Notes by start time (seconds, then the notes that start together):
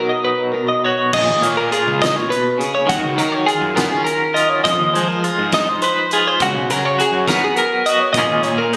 Already playing: B2 F#3 D#4 F#4 A#4
0.09 D#5
0.25 B4
0.52 B2 A#4
0.68 D#5
0.85 F#4 C#5
1.13 A#1 A#2 D#5, kick, crash
1.29 G#1
1.42 A#2 A#3 C#5, closed hi-hat
1.57 A#4
1.72 F4 G#4, closed hi-hat
1.87 C#2
1.99 A#2 D#5, kick
2.03 snare, closed hi-hat
2.16 C#5
2.29 B2 B4, closed hi-hat
2.58 C#3 G#4, closed hi-hat
2.75 C#5
2.87 D#2 D#3 F#4, kick, closed hi-hat
3.04 C#2
3.16 D#3 F#3 A#4, closed hi-hat
3.32 C#5
3.46 F4 G#4, closed hi-hat
3.61 F#2
3.75 B3 A#4, kick, snare, closed hi-hat
3.89 C#4 G#4
4.04 A#4, closed hi-hat
4.34 F4 D#5, closed hi-hat
4.50 C#5
4.64 F2 F3 D#5, kick, closed hi-hat
4.79 D#2
4.94 F3 G#3 C5, closed hi-hat
5.08 A#4
5.24 F4 G#4, closed hi-hat
5.38 G#2
5.52 D#4 D#5, kick, snare, closed hi-hat
5.69 C5
5.82 B4 C5, closed hi-hat
6.11 F4 G#4, closed hi-hat
6.27 C5
6.40 C#2 C#3 F#4, kick, closed hi-hat
6.55 B1
6.69 C#3 F#3 A#4, closed hi-hat
6.85 C#5
6.99 F#4 G#4, closed hi-hat
7.12 F#2
7.28 B3 A#4, kick, snare, closed hi-hat
7.44 G#4
7.56 A#4, closed hi-hat
7.86 F#4 D#5, closed hi-hat
8.00 C#5
8.13 A#1 A#2 D#5, kick, closed hi-hat
8.18 A#3 C#4 F4 G#4
8.29 G#1
8.43 A#2 A#3 C#5, closed hi-hat
8.58 A#4
8.73 D#4, closed hi-hat